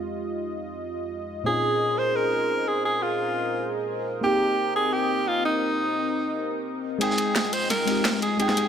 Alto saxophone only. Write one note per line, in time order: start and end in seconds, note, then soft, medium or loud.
1.46 2.00 G#4 loud
1.98 2.17 C5 loud
2.16 2.69 A#4 loud
2.68 2.84 G#4 medium
2.85 3.04 G#4 medium
3.03 3.72 F4 medium
4.24 4.72 G4 loud
4.76 4.95 G#4 loud
4.93 5.29 G4 loud
5.28 5.44 F4 loud
5.45 6.62 D#4 medium
7.01 7.55 G#4 loud
7.53 7.70 C5 loud
7.70 8.19 A#4 loud
8.22 8.38 G#4 medium
8.40 8.68 G#4 loud